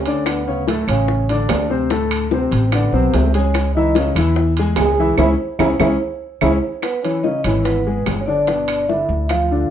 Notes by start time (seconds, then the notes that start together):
Already playing: D2 C#4
0.06 D3 D4 D5, high timbale
0.26 B3, high bongo, high timbale, claves
0.47 C#3 C#4 C#5
0.68 A2 A3 A4, high bongo, high timbale, low timbale
0.87 A1 C#3 C#4 C#5, high bongo, high timbale, claves
1.08 high bongo
1.29 D3 D4 D5, high bongo, high timbale
1.49 D2, high bongo, low bongo, high timbale, low timbale, claves
1.70 C3 C4 C5, high bongo
1.90 A2 A3 A4, high bongo, high timbale
2.11 high timbale, claves
2.31 C3 C4 C5, high bongo, low timbale
2.51 A1, high bongo, high timbale
2.72 D3 B3 D4 D5, high bongo, high timbale, claves
2.92 B1 C3 C4 C5, high bongo
3.14 C#2 A3, high bongo, low bongo, high timbale, low timbale
3.34 G#3 C#4 G#4 G#5, high bongo, high timbale
3.54 high bongo, high timbale, claves
3.75 E3 D#4 E4 E5
3.95 C#3 C#4 C#5, high bongo, high timbale, low timbale
4.15 E2 E3 E4 E5, high bongo, high timbale, claves
4.36 high bongo
4.57 G#3 G#4 G#5, high bongo, high timbale
4.76 C#2 G#4, high bongo, low bongo, high timbale, low timbale, claves
4.98 E3 E4 E5, high bongo
5.17 C#2 C#4 E4 G#4, low bongo, high timbale, claves
5.59 C#2 C#4 E4 G#4, low bongo, high timbale, claves
5.80 C#2 C#4 E4 G#4, low bongo, high timbale, claves
6.41 C#2 C#4 E4 G#4, low bongo, high timbale, claves
6.82 B3 B4, high bongo, high timbale, claves
7.02 E3 C#4 E4 C#5, high bongo, high timbale
7.23 C#3 C#4 D#4 D#5, high bongo
7.44 G#1 E3 C#4 E4 C#5, high bongo, high timbale, claves
7.64 B3 B4, high bongo, high timbale
7.87 G#3 G#4
8.06 G1, high bongo, low bongo, high timbale, low timbale, claves
8.19 C#4 C#5
8.26 D3 D4 D5, high bongo
8.47 B2 B3, high bongo, high timbale
8.68 high bongo, high timbale, claves
8.89 D3 D4 E4 E5, high bongo
9.09 D2, high bongo
9.29 F3 F4 F5, high bongo, high timbale, claves
9.51 D3 D4